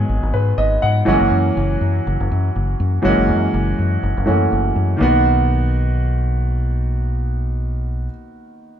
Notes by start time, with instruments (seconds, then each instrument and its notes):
Already playing: grand piano D#3 F#3 G#3 B3 G#4
0.09 fingered electric bass G#1
0.23 fingered electric bass G#1
0.34 fingered electric bass G#2, grand piano B4
0.58 fingered electric bass G#1, grand piano D#5
0.82 fingered electric bass G#2, grand piano F#5
1.05 fingered electric bass F#1, grand piano E3 F#3 G#3 C#4 F#4
1.12 grand piano A#3
1.20 fingered electric bass F#1
1.31 fingered electric bass F#2
1.57 fingered electric bass F#1
1.81 fingered electric bass F#2
2.07 fingered electric bass F#1
2.20 fingered electric bass F#1
2.32 fingered electric bass F#2
2.56 fingered electric bass F#1
2.80 fingered electric bass F#2
3.02 fingered electric bass F#1, grand piano E3 F#3 G#3 C#4 F#4
3.09 grand piano A#3
3.18 fingered electric bass F#1
3.28 fingered electric bass F#2
3.54 fingered electric bass F#1
3.79 fingered electric bass F#2
4.03 fingered electric bass F#1
4.17 fingered electric bass F#1
4.26 fingered electric bass F#2, grand piano E3 F#3 A3 C#4 F#4
4.32 grand piano A#3
4.52 fingered electric bass F#1
4.76 fingered electric bass F#2
4.97 grand piano D#3 A#3 B3
5.01 fingered electric bass B1, grand piano F#4